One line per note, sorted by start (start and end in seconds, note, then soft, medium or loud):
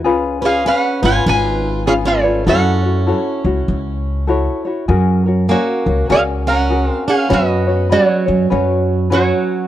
0.04 0.69 C#2 loud
0.04 0.42 C#4 medium
0.04 0.42 F4 medium
0.04 0.42 G#4 medium
0.04 0.40 B4 medium
0.41 0.64 C#4 medium
0.41 0.64 C#4 soft
0.41 0.64 F4 soft
0.41 0.65 G#4 medium
0.41 0.65 B4 medium
0.46 0.68 F5 medium
0.65 1.03 C#4 medium
0.65 1.00 C#4 medium
0.65 1.02 G#4 medium
0.65 1.01 B4 medium
0.65 1.05 F#5 medium
1.02 1.18 G#1 medium
1.02 1.86 C#4 soft
1.02 1.24 F4 medium
1.02 1.86 F4 soft
1.02 1.86 B4 medium
1.02 1.25 B4 medium
1.02 1.28 G#5 loud
1.26 2.48 G#1 medium
1.26 1.83 F4 medium
1.26 1.83 B4 medium
1.26 1.90 G#5 loud
1.86 2.24 C#4 medium
1.86 1.93 C#4 medium
1.86 2.24 F4 medium
1.86 2.23 G#4 medium
1.86 1.92 G#4 medium
1.86 2.23 B4 medium
1.86 1.94 F5 medium
2.05 2.44 A3 medium
2.05 2.45 F4 medium
2.05 2.49 C#5 medium
2.24 2.47 C#4 soft
2.24 2.46 F4 soft
2.24 2.46 B4 medium
2.46 3.10 F#2 loud
2.46 4.25 C#4 medium
2.46 2.84 E4 medium
2.46 2.84 F#4 medium
2.46 2.84 A4 medium
2.46 4.25 A4 medium
2.46 2.83 C#5 medium
2.46 4.25 F#5 medium
2.84 3.06 E4 soft
2.84 3.07 F#4 soft
2.84 3.07 C#5 soft
3.07 3.44 E4 medium
3.07 3.45 F#4 medium
3.07 3.44 A4 medium
3.07 3.44 C#5 medium
3.45 3.60 C#2 medium
3.45 4.27 E4 soft
3.45 4.28 F#4 medium
3.45 4.29 C#5 medium
3.68 4.47 C#2 medium
4.27 4.65 E4 medium
4.27 4.65 F#4 medium
4.27 4.65 A4 medium
4.27 4.64 C#5 medium
4.65 4.89 E4 soft
4.65 4.88 F#4 medium
4.65 4.88 C#5 medium
4.88 5.52 F#2 loud
4.88 5.26 C#4 medium
4.88 5.26 F#4 medium
4.88 5.25 G#4 medium
4.88 5.25 A#4 medium
5.26 5.48 C#4 soft
5.26 5.49 F#4 soft
5.26 5.49 A#4 soft
5.49 6.05 A#3 medium
5.49 5.86 C#4 medium
5.49 5.86 F#4 medium
5.49 6.06 F#4 medium
5.49 5.86 G#4 medium
5.49 5.85 A#4 medium
5.49 6.12 C#5 medium
5.86 6.01 C#2 medium
5.86 6.09 C#4 soft
5.86 6.09 F#4 soft
5.86 6.09 A#4 medium
6.09 6.88 C#2 medium
6.09 6.70 C#4 medium
6.09 6.20 C#4 medium
6.09 6.70 F#4 medium
6.09 6.68 G#4 medium
6.09 6.22 G#4 medium
6.09 6.70 A#4 medium
6.09 6.22 F5 medium
6.47 6.87 C#4 medium
6.47 7.04 A#4 medium
6.47 6.92 F#5 medium
6.69 7.29 C#4 medium
6.69 7.29 F#4 medium
6.69 7.29 G#4 medium
6.69 7.29 A#4 medium
6.87 7.03 C4 medium
6.92 7.09 F5 medium
7.08 7.29 C#4 medium
7.08 7.30 G#4 medium
7.08 7.32 F5 medium
7.29 7.94 F#2 loud
7.29 7.87 B3 medium
7.29 7.67 C#4 medium
7.29 7.67 F#4 medium
7.29 7.67 B4 medium
7.29 7.66 C#5 medium
7.33 7.88 F#4 medium
7.33 7.94 D#5 medium
7.67 7.89 C#4 soft
7.67 7.89 F#4 soft
7.67 7.90 C#5 soft
7.89 9.09 F#3 medium
7.89 8.27 C#4 medium
7.89 8.26 F#4 medium
7.89 9.09 F#4 medium
7.89 8.27 B4 medium
7.89 8.25 C#5 medium
7.89 9.12 C#5 medium
8.26 8.43 F#2 medium
8.26 8.49 C#4 soft
8.26 8.50 F#4 soft
8.26 8.50 C#5 medium
8.50 9.30 F#2 medium
8.50 9.09 C#4 medium
8.50 9.10 F#4 medium
8.50 9.10 B4 medium
8.50 9.11 C#5 medium
9.10 9.67 F#3 medium
9.10 9.67 C#4 medium
9.10 9.67 F#4 medium
9.10 9.67 B4 medium
9.10 9.67 C#5 medium
9.14 9.67 F#4 medium